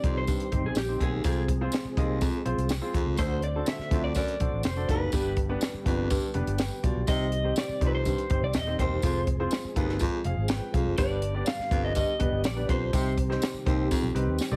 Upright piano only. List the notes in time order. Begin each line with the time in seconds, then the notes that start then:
0.04 C4 D#4 G4 C5
0.52 C4 D#4 G4 C5
0.88 C4 D#4 G4 C5
1.24 C3 C4 F4 G#4 C5
1.61 C4 F4 G#4 C5
1.97 C4 F4 G#4 D#5
2.45 C4 F4 G#4 C5
2.82 C4 F4 G#4 C5
3.18 D3 D4 F#4 A4 C5
3.55 D4 F#4 A4 C5
3.91 D4 F#4 A4 C5
4.40 D4 F#4 A4 C5
4.76 D4 F#4 A4 D5
5.13 G2 B3 D4 G4 B4
5.49 B3 D4 G4 B4
5.86 B3 D4 G4 B4
6.34 B3 D4 G4 B4
6.59 B4 G5
6.83 F4 D5
7.07 C3 C4 D#4 G4 C5
7.44 C4 D#4 G4 C5
7.81 C4 D#4 G4 C5
8.30 C4 D#4 G4 C5
8.67 C4 D#4 G4 C5
9.04 C4 F4 G#4 C5
9.40 C4 F4 G#4 C5
9.76 C4 F4 G#4 B4
10.25 G#4 F5
10.49 B4 G5
10.74 G#4 F5
10.98 G2 B3 D4 G4 B4
11.35 B3 D4 G4 D5
11.71 B3 D4 G4 B4
12.19 B3 D4 G4 B4
12.56 B3 D4 G4 B4
12.93 C3 C4 D#4 G4 C5
13.30 C4 D#4 G4 C5
13.66 C4 D#4 G4 C5
14.15 C4 D#4 G4 B4
14.51 C4 D#4 G4 D5